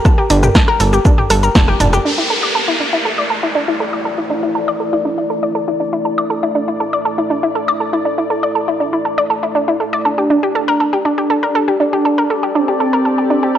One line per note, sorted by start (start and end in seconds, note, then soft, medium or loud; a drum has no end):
0.00 2.01 G4 medium
0.00 2.01 A4 medium
0.00 2.01 A#4 medium
0.05 0.13 A4 medium
0.05 kick loud
0.05 cross-stick medium
0.05 shaker medium
0.18 0.26 G4 medium
0.30 0.49 G1 loud
0.30 0.38 D4 medium
0.30 open hi-hat loud
0.30 shaker medium
0.43 0.48 G4 medium
0.43 cross-stick soft
0.43 mid tom medium
0.43 shaker medium
0.55 0.60 A4 medium
0.55 kick loud
0.55 snare loud
0.55 shaker medium
0.68 0.76 A#4 loud
0.68 cross-stick medium
0.80 0.99 G1 medium
0.80 0.92 A4 medium
0.80 open hi-hat medium
0.80 shaker medium
0.93 0.98 G4 medium
0.93 shaker medium
1.05 1.13 D4 medium
1.05 kick loud
1.05 cross-stick soft
1.05 shaker medium
1.18 1.26 G4 medium
1.18 mid tom medium
1.30 1.49 G1 medium
1.30 1.35 A4 medium
1.30 cross-stick medium
1.30 open hi-hat loud
1.30 shaker medium
1.43 1.51 A#4 medium
1.43 shaker medium
1.55 1.74 F1 medium
1.55 1.63 A4 medium
1.55 kick loud
1.55 snare loud
1.55 shaker medium
1.68 1.76 G4 medium
1.68 cross-stick soft
1.80 1.99 F1 medium
1.80 1.88 D4 medium
1.80 mid tom medium
1.80 open hi-hat medium
1.80 shaker medium
1.93 1.97 G4 medium
1.93 cross-stick medium
1.93 shaker medium
2.05 10.01 A3 medium
2.05 2.13 D4 medium
2.05 10.01 E4 medium
2.05 10.01 D5 medium
2.05 downlifter medium
2.18 2.26 E4 medium
2.30 2.35 A4 medium
2.30 open hi-hat medium
2.43 2.51 D5 medium
2.55 2.63 A4 medium
2.68 2.76 E4 medium
2.80 2.88 D4 medium
2.93 2.98 E4 medium
3.05 3.10 A4 medium
3.18 3.26 D5 loud
3.30 3.42 A4 medium
3.30 open hi-hat medium
3.43 3.48 E4 medium
3.55 3.63 D4 medium
3.68 3.76 E4 medium
3.80 3.85 A4 medium
3.93 4.01 D5 medium
4.05 4.13 A4 medium
4.18 4.26 E4 medium
4.30 4.38 D4 medium
4.30 open hi-hat loud
4.43 4.48 E4 medium
4.55 4.60 A4 medium
4.68 4.76 D5 medium
4.80 4.92 A4 medium
4.80 open hi-hat medium
4.93 4.98 E4 medium
5.05 5.13 D4 medium
5.18 5.26 E4 medium
5.30 5.35 A4 medium
5.30 open hi-hat loud
5.43 5.51 D5 medium
5.55 5.63 A4 medium
5.68 5.76 E4 medium
5.80 5.88 D4 medium
5.80 open hi-hat medium
5.93 5.98 E4 medium
6.05 6.10 A4 medium
6.18 6.26 D5 loud
6.30 6.42 A4 medium
6.30 open hi-hat loud
6.43 6.48 E4 medium
6.55 6.63 D4 medium
6.68 6.76 E4 medium
6.80 6.85 A4 medium
6.80 open hi-hat medium
6.93 7.01 D5 medium
7.05 7.13 A4 medium
7.18 7.26 E4 medium
7.30 7.38 D4 medium
7.30 open hi-hat loud
7.43 7.48 E4 medium
7.55 7.60 A4 medium
7.68 7.76 D5 loud
7.80 7.92 A4 medium
7.80 open hi-hat medium
7.93 7.98 E4 medium
8.05 8.13 D4 medium
8.18 8.26 E4 medium
8.30 8.35 A4 medium
8.30 open hi-hat loud
8.43 8.51 D5 medium
8.55 8.63 A4 medium
8.68 8.76 E4 medium
8.80 8.88 D4 medium
8.80 open hi-hat medium
8.93 8.98 E4 medium
9.05 9.10 A4 medium
9.18 9.26 D5 loud
9.30 9.42 A4 medium
9.30 open hi-hat loud
9.43 9.48 E4 medium
9.55 9.63 D4 medium
9.68 9.76 E4 medium
9.80 9.85 A4 medium
9.80 open hi-hat medium
9.93 10.01 D5 medium
10.05 10.95 D4 loud
10.05 13.58 G4 medium
10.05 13.58 A4 medium
10.05 10.13 A4 medium
10.05 13.58 D5 medium
10.18 10.26 G4 medium
10.30 10.38 D4 medium
10.30 open hi-hat loud
10.43 10.48 G4 medium
10.55 10.60 A4 medium
10.68 10.75 A#4 loud
10.80 10.92 A4 medium
10.80 open hi-hat medium
10.93 10.97 G4 medium
11.05 11.13 D4 medium
11.05 11.70 D4 medium
11.18 11.26 G4 medium
11.30 11.35 A4 medium
11.30 open hi-hat loud
11.43 11.51 A#4 medium
11.55 11.63 A4 medium
11.68 11.76 G4 medium
11.80 11.88 D4 medium
11.80 12.57 D4 loud
11.80 open hi-hat medium
11.93 11.98 G4 medium
12.05 12.10 A4 medium
12.18 12.26 A#4 medium
12.30 12.42 A4 medium
12.30 open hi-hat medium
12.43 12.47 G4 medium
12.55 13.58 C4 loud
12.55 12.63 D4 medium
12.68 12.76 G4 medium
12.80 12.85 A4 medium
12.80 open hi-hat medium
12.93 13.01 A#4 medium
13.05 13.13 A4 medium
13.18 13.26 G4 medium
13.30 13.38 D4 medium
13.30 open hi-hat medium
13.43 13.48 G4 medium
13.55 13.58 A4 medium